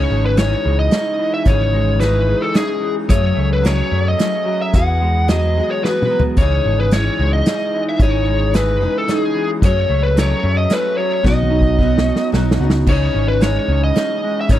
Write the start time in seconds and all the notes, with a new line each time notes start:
Already playing: C#3 E3 C#4 D#4 G#4 C#5
0.10 G#1 G#3
0.26 B4
0.37 E3 C#4 D#4 G#4 C#5, snare, closed hi-hat
0.65 C#2 G#3
0.79 D#5
0.91 E3 C#4 D#4, snare, closed hi-hat
0.95 G#4
1.19 E3
1.34 E5
1.45 G#1 C#3 E3 C#4 D#4 C#5, kick, closed hi-hat
1.50 G#4
1.73 G#3
2.00 E3 C#4 B4, snare, closed hi-hat
2.04 D#4 G#4
2.28 G#3
2.42 A4
2.54 E3 C#4 D#4 G#4, snare, closed hi-hat
2.82 E3
3.09 F#2 C#3 F#3 A3 C#4 G#4 C#5, kick, closed hi-hat
3.35 C#2 A3
3.53 B4
3.62 F#3 A3 C#5, snare, closed hi-hat
3.66 C#4 G#4
3.91 F#2 A3
4.08 D#5
4.18 F#3 A3 C#4 G#4, snare, closed hi-hat
4.46 F#3
4.62 E5
4.74 E2 E3 B3 F#4 G#4 F#5, kick, closed hi-hat
5.02 G#3
5.28 E3 F#3 B3 F#4 D#5, snare, closed hi-hat
5.32 G#4
5.57 G#3 F#4 G#4
5.61 B3
5.71 C#5
5.84 E3 B3 F#4 B4, snare
5.89 G#4
6.02 mid tom
6.11 F#3
6.20 floor tom
6.37 C#2 C#3 E3 C#4 C#5, kick, closed hi-hat
6.41 D#4 G#4
6.64 G#1 G#3
6.80 B4
6.91 E3 C#5, snare, closed hi-hat
6.95 C#4 D#4 G#4
7.19 C#2 G#3
7.33 D#5
7.46 E3 C#4 D#4, snare, closed hi-hat
7.51 G#4
7.74 E3
7.89 E5
8.00 G#1 C#3 E3 C#4 D#4 G#4 C#5, kick, closed hi-hat
8.27 G#3
8.54 E3 C#4 D#4 G#4 B4, snare, closed hi-hat
8.80 G#3 C#4 D#4 G#4
8.98 A4
9.08 E3 C#4 D#4 G#4, snare, closed hi-hat
9.34 E3
9.61 F#2 C#3 F#3 A3 C#4 G#4, kick, closed hi-hat
9.65 C#5
9.89 C#2 A3
10.03 B4
10.16 F#3 A3 C#4 C#5, snare, closed hi-hat
10.20 G#4
10.43 F#2 A3
10.57 D#5
10.70 F#3 A3 C#4 G#4 B4, snare, closed hi-hat
10.97 F#3 C#5
11.23 B1 B2 F#3 B3 C#4 D#4 D#5, kick, snare
11.27 F#4
11.43 high tom
11.50 D#4
11.61 kick
11.79 F#3 B3 C#4 D#4 F#4, kick
11.98 snare
12.06 D#4
12.16 snare
12.32 B1 F#3 C#4 D#4 F#4, snare
12.36 F#4
12.51 snare
12.60 C#2 B3 D#4 F#4
12.64 C#4
12.70 snare
12.86 C#2 C#3 E3 C#4 D#4 C#5, kick, crash
12.91 G#4
13.14 G#1 C#4
13.28 B4
13.40 E3 G#3 C#4 D#4 G#4 C#5, snare, closed hi-hat
13.68 C#2 C#4
13.84 D#5
13.94 E3 C#4 D#4 G#4, snare, closed hi-hat
14.23 G#3
14.41 E5
14.49 G#1 C#3 E3 C#4 D#4 G#4 C#5, kick, closed hi-hat